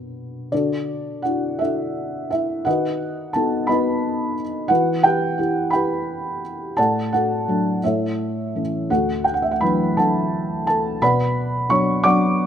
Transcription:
felt piano
Already playing: B2 B3 D4 F#4 B4
0.52 D3 D4 F#4 A4 D5
1.22 D4 E4 F#4 F#5
1.59 D4 E4 F#4 A4 E5
2.31 E4 E5
2.65 D#3 F#4 B4 D#5 F#5
3.33 B3 D#4 F#4 A4 A5
3.67 B3 D#4 F#4 B4 D#5 B5
4.68 E3 F#4 B4 F#5
5.03 G4 B4 G5
5.38 E4 G4
5.70 E4 G4 B4 G5 B5
6.77 A2 A4 D5 F#5 A5
7.12 F#4 A4 F#5
7.48 F#3 A3 D4
7.84 A2 E4 A4 C#5 E5
8.55 E3 A3 C#4
8.90 D2 F#4 A4 F#5
9.24 G5
9.34 F#5
9.42 E5
9.51 F#5
9.61 E3 F#3 D4 B4 B5
9.97 E3 F#3 D4 A4 F#5 A5
10.67 A4 A5
11.02 B2 B4 D5 F#5 B5
11.69 F#3 B3 D4 C#5 C#6
12.04 F#3 B3 D4 D5 F#5 D6

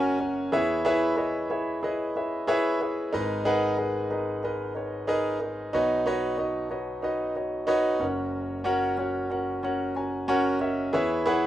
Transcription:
grand piano
Already playing: F#1 F#2 C#4 F#4 A#4 C#5 E5 F#5 G#5
0.19 C#4 F#4 A#4 C#5 F#5
0.52 E2 E3 E4 G#4 B4 C#5 E5
0.85 E4 G#4 B4 C#5 E5
1.16 E4 G#4 B4 C#5 D#5
1.50 E4 G#4 B4 C#5 E5
1.83 E4 G#4 B4 C#5 D#5
2.16 E4 G#4 B4 C#5 E5
2.47 E4 G#4 B4 C#5 E5
2.81 E4 G#4 B4 C#5
3.13 G#1 G#2 D#4 G#4 A#4 B4 D#5
3.45 D#4 G#4 A#4 B4 F#5
3.77 D#4 G#4 A#4 B4 D#5
4.10 D#4 G#4 A#4 B4 D#5
4.43 D#4 G#4 A#4 B4 D#5
4.75 D#4 G#4 A#4 B4 C#5
5.07 D#4 G#4 A#4 B4 D#5
5.40 D#4 G#4 A#4 B4 D#5
5.73 B1 B2 D#4 F#4 B4 C#5 D#5
6.06 D#4 F#4 B4 C#5 D#5
6.38 D#4 F#4 B4 C#5 D#5
6.70 D#4 F#4 B4 C#5 D#5
7.02 D#4 F#4 B4 C#5 D#5
7.35 D#4 F#4 B4 C#5 D#5
7.67 D#4 F#4 B4 C#5 D#5
8.00 F#1 F#2 C#4 F#4 A#4 C#5 F#5
8.64 C#4 F#4 A#4 C#5 F#5
8.97 C#4 F#4 A#4 C#5 F#5
9.30 C#4 F#4 A#4 C#5 F#5
9.63 C#4 F#4 A#4 C#5 F#5
9.95 C#4 F#4 A#4 C#5 G#5 A#5
10.28 C#4 F#4 A#4 C#5 F#5 G#5
10.45 F#5
10.60 C#4 F#4 A#4 C#5 D#5 E5
10.93 E2 E3 E4 G#4 B4 C#5 E5
11.26 E4 G#4 B4 C#5 F#5

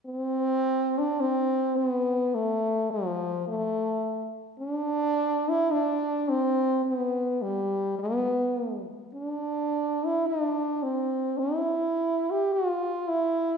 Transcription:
french horn
0.06 C4
0.99 D4
1.20 C4
1.77 B3
2.35 A3
2.91 F3
3.48 A3
4.59 D4
5.50 E4
5.72 D4
6.29 C4
6.85 B3
7.42 G3
7.99 B3
9.14 D4
10.05 E4
10.27 D4
10.83 C4
11.39 E4
12.31 G4
12.53 F4
13.08 E4

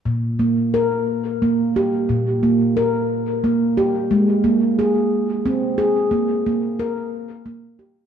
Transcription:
handpan
0.06 A#2
0.39 A#3
0.74 A#4
1.42 A#3
1.76 G4
2.09 A#2
2.43 A#3
2.77 A#4
3.44 A#3
3.77 G4
4.11 G#3
4.44 A#3
4.79 G#4
5.46 C4
5.78 G#4
6.11 A#3
6.46 A#3
6.79 A#4
7.46 A#3
7.79 G4

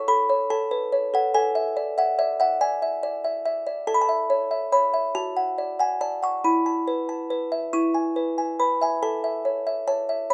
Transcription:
music box
Already playing: C#5
0.08 A4 B5
0.29 C#5
0.50 A4 A5
0.71 B4
0.92 C#5
1.14 A4 F#5
1.34 A4 G#5
1.55 E5
1.77 D5
1.98 E5 F#5
2.19 D5 E5
2.40 E5 F#5
2.61 D5 G#5
2.82 E5
3.03 D5
3.24 E5
3.45 E5
3.67 D5
3.87 A4 A5
3.94 B5
4.01 A5
4.09 E5
4.30 C#5
4.51 E5
4.72 C#5 B5
4.94 E5
5.15 F#4 A5
5.37 F#5
5.58 D5
5.79 F#5 G#5
6.01 D5 A5
6.23 F#5 C#6
6.44 E4 B5
6.66 A5
6.88 B4
7.09 A5
7.30 B4
7.52 E5
7.73 E4 C#6
7.94 G#5
8.16 B4
8.38 G#5
8.59 B4 B5
8.81 E5 G#5
9.03 A4 A5
9.24 E5
9.45 C#5
9.67 E5
9.88 C#5 A5
10.09 E5
10.30 C#5 B5

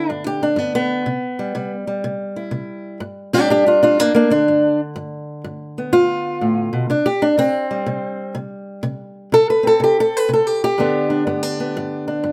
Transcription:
steel-string acoustic guitar
Already playing: D3 B3 D4 E4
0.10 G2 D4
0.27 G4
0.43 D4
0.56 G2 B3
0.75 B3
1.06 C3
1.39 G3
1.55 C3 G3
1.87 G3
2.04 C3
2.36 E4
2.51 C3
3.00 G2
3.33 G3 D4 G4
3.49 G2 D4 G4
3.67 D4 F4
3.83 D4 F4
3.99 G2 A#3 D4
4.15 A#3 D4
4.30 D3 D4
4.48 G2
4.96 G2
5.44 G2
5.78 B3
5.93 G2 F4
6.41 A2
6.73 B2
6.90 C3 D4
7.06 G4
7.22 D4
7.38 C3 C4
7.71 G3
7.86 C3
8.35 C3
8.83 C3
9.32 C3 A4
9.50 B4
9.63 C4
9.67 A4
9.80 C3 G4
10.00 A4
10.17 B4
10.29 C3
10.34 A4
10.47 G4
10.64 G4
10.78 G2 D3 B3 D4
11.10 D4
11.27 G2 B3
11.43 D4
11.60 B3
11.77 G2
12.08 D4
12.24 G2

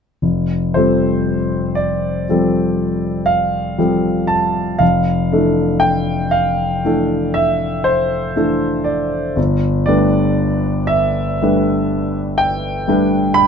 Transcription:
grand piano
0.22 F1
0.74 F3 G3 C4 A4 C5
1.75 D5
2.29 F3 G3 C4 A4
3.26 F5
3.78 F3 G3 C4 A4
4.27 A5
4.79 F1 F5
5.32 E3 A3 D4 A4
5.80 G5
6.31 F5
6.85 E3 A3 D4 A4
7.34 E5
7.84 C5
8.36 E3 A3 D4 A4
8.84 D5
9.36 G1
9.86 G3 A3 D4 B4 D5
10.87 E5
11.42 G3 A3 D4 B4
12.38 G5
12.88 G3 A3 D4 B4
13.34 B5

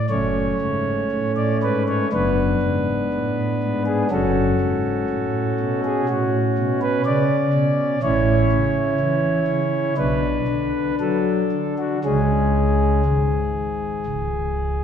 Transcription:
pipe organ
0.10 F#1 F#2 A3 C#4 C#5
0.61 G#2
1.12 A2
1.36 D5
1.63 G#2 B4
1.88 C#5
2.12 F#1 F#2 B3 D4 B4
2.63 G#2
3.14 A2
3.63 G#2
3.86 G#4
4.11 F#1 F#2 C#4 F#4 A4
4.61 G#2
5.10 A2
5.60 B2
5.85 G#4
6.09 A2 F#4
6.58 B2
6.82 B4
7.05 C#3 D5
7.53 B2
8.03 A1 A2 C#4 E4 C#5
8.52 C#3
9.00 E3
9.48 C#3
9.97 B1 B2 D4 B4
10.48 D3
11.00 F#3 A4
11.52 D3
11.78 F#4
12.04 C#2 C#3 G#3 C#4 G#4
13.05 G#1 G#2
14.06 C#1 C#2

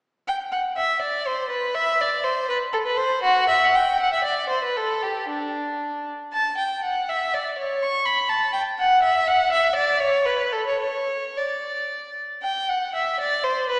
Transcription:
violin
0.28 G5
0.52 F#5
0.77 E5
1.02 D5
1.26 C5
1.50 B4
1.75 E5
2.01 D5
2.24 C5
2.49 B4
2.73 A4
2.86 B4
2.97 C5
3.23 F#4
3.49 E5
3.64 F#5
3.76 G5
4.00 F#5
4.13 E5
4.25 D5
4.49 C5
4.64 B4
4.77 A4
5.03 G4
5.29 D4
6.33 A5
6.57 G5
6.83 F#5
7.09 E5
7.34 D5
7.59 C#5
7.82 C#6
8.06 B5
8.29 A5
8.53 G5
8.79 F#5
9.02 E5
9.27 F#5
9.52 E5
9.76 D5
10.00 C#5
10.26 B4
10.53 A4
10.67 C#5
10.80 C#5
11.37 D5
12.43 G5
12.69 F#5
12.95 E5
13.20 D5
13.44 C5
13.69 B4

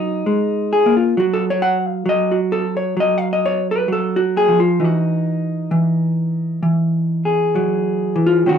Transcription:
hollow-body jazz guitar
Already playing: F#3 C#4 D#4
0.26 G#3
0.73 G#4
0.86 A#3
0.97 F4
1.17 F#3 F#4
1.33 A4
1.50 C#5
1.62 F#5
1.87 F5
2.06 F#3 D#5
2.31 F#4
2.52 A4
2.77 C#5
2.97 F#3 D#5
3.18 F5
3.33 D#5
3.46 C#5
3.71 B4
3.88 F#3
3.92 A4
4.16 F#4
4.37 G#4
4.49 F3
4.60 F4
4.80 E3 D#4
4.84 F#4
5.71 E3
6.63 E3
7.25 G#4
7.55 F#3
8.16 E3
8.26 F4
8.46 D#3 F#3 C#4 F#4

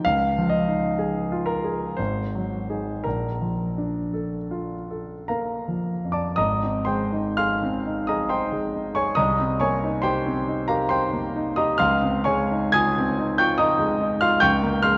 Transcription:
grand piano
0.05 C#2 F5
0.38 F3
0.49 D#5
0.68 D#4
0.99 G#4
1.32 F4
1.46 A#4
1.64 G#4
1.97 G#1 C5
2.35 F#3
2.69 D#4 G#4
3.04 A#1 A#4
3.41 F3
3.78 D4
4.14 A4
4.51 F4
4.91 A4
5.28 A#3 A#4 F5 A#5
5.68 F3
6.05 F2
6.12 D5 A5 D6
6.36 G#1 D#5 A#5 D#6
6.63 C4
6.85 G#3 C5 G5 C6
7.13 D#4
7.37 G#4 F5 C6 F6
7.63 C4
7.86 D#4
8.07 G#4 D#5 A#5 D#6
8.29 D#4 C5 G5 C6
8.52 G#3
8.74 D#4
8.95 G#4 C#5 G#5 C#6
9.15 C2 D#5 A#5 D#6
9.39 C4
9.60 A#3 C#5 G#5 C#6
9.84 D#4
10.02 G4 C5 G5 C6
10.26 C4
10.48 D#4
10.68 G4 A#4 F5 A#5
10.89 D#4 C5 G5 C6
11.13 A#3
11.36 D#4
11.56 G4 D#5 A#5 D#6
11.78 C#2 F5 C6 F6
12.02 C4
12.24 G#3 C#5 G#5 C#6
12.51 D#4
12.72 F4 G#5 D#6 G#6
12.98 C4
13.19 D#4
13.38 F4 G5 C#6 G6
13.58 D#4 D#5 A#5 D#6
13.79 G#3
14.01 D#4
14.21 F4 F5 C6 F6
14.40 C#2 G5 C#6 G6
14.63 A#3
14.82 G#3 F5 C6 F6

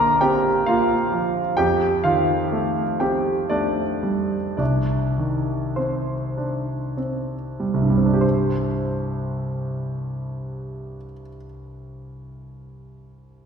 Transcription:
grand piano
Already playing: A#1 D3 A#3 A#4 C5 D5 A#5 C6 D6
0.21 C4 G4 G5
0.66 A#3 F4 F5
1.12 F3
1.57 F2 G4 G5
2.04 D#3 F4 F5
2.52 A3
3.00 C4 G4 G5
3.50 A3 D4 D5
4.03 G3
4.57 C2 D4 D5
5.18 D#3
5.76 C4 C5
6.37 D4
6.97 C4
7.60 G3
7.74 C2
7.82 G2
7.90 G3
7.97 C4
8.06 D4
8.13 G4
8.21 C5

